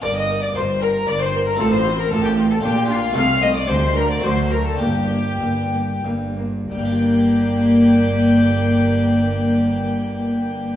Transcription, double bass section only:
X:1
M:3/4
L:1/8
Q:1/4=103
K:Gm
V:1 name="Double bass section" clef=bass
G,,,2 G,,,2 G,,,2 | A,,,2 A,,,2 B,,,2 | C,,2 D,,2 D,,2 | G,,,2 G,,,2 G,,,2 |
G,,,6- | G,,,6 |]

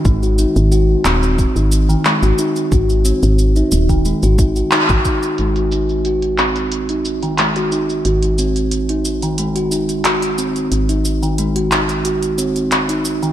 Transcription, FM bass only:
X:1
M:4/4
L:1/16
Q:1/4=90
K:none
V:1 name="FM bass" clef=bass
^G,,,2 z G,,,2 z ^D,,,2 z G,,,2 z2 G,,, z2 | ^G,,,2 z G,,,2 z ^D,,,2 z G,,,2 z2 G,,, z2 | ^G,,,16 | ^G,,,16 |
^G,,,16 |]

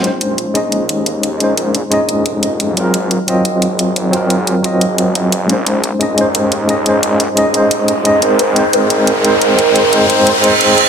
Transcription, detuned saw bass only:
X:1
M:4/4
L:1/8
Q:"Swing 16ths" 1/4=176
K:Bbm
V:1 name="Detuned saw bass" clef=bass
B,,,2 z B,,,2 E,,3 | B,,,2 z B,,,2 F,,,3 | A,,,2 z A,,,2 A,,,3 | A,,,2 z A,,,3 G,,,2 |
B,,,2 z B,,,2 E,,3 | B,,,2 z B,,,2 F,,,3 | A,,,2 z A,,,2 A,,,3 | A,,,2 z A,,,2 z2 C,, |]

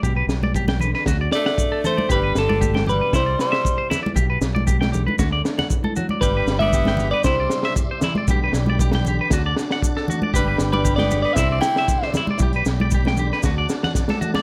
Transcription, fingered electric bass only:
X:1
M:4/4
L:1/8
Q:1/4=116
K:G
V:1 name="Fingered electric bass" clef=bass
B,,, B,,,3 D,, z3 | G,,, G,,,3 C,, z3 | B,,, B,,,3 D,, z3 | G,,, G,,,3 C,, z3 |
B,,, B,,,3 D,, z3 | G,,, G,,,3 C,, z3 | B,,, B,,,3 D,, z3 |]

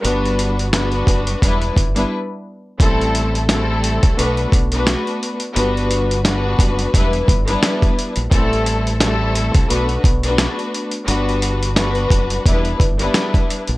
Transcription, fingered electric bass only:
X:1
M:4/4
L:1/16
Q:"Swing 16ths" 1/4=87
K:Ador
V:1 name="Fingered electric bass" clef=bass
G,,,6 F,,,2 E,,,2 G,,,2 z4 | A,,,6- A,,, C,, B,,,2 B,,,3 z3 | G,,,6 F,,,2 E,,,2 G,,,2 z3 _B,,, | A,,,6- A,,, C,, B,,,2 B,,,3 z3 |
G,,,6 F,,,2 E,,,2 G,,,2 z3 _B,,, |]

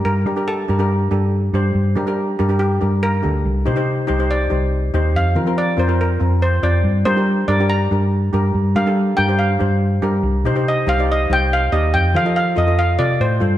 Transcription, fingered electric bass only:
X:1
M:4/4
L:1/8
Q:1/4=141
K:Gm
V:1 name="Fingered electric bass" clef=bass
G,, G,2 G,,2 G,,2 G,, | G,, G,2 G,,2 G,,2 D,, | C,, C,2 C,,2 C,,2 E,, | F,, F,2 F,,2 F,,2 F,, |
G,, G,2 G,,2 G,,2 G,, | G,, G,2 G,,2 G,,2 G,, | C,, C,2 C,,2 C,,2 E,, | F,, F,2 F,,2 C, A,, G,, |]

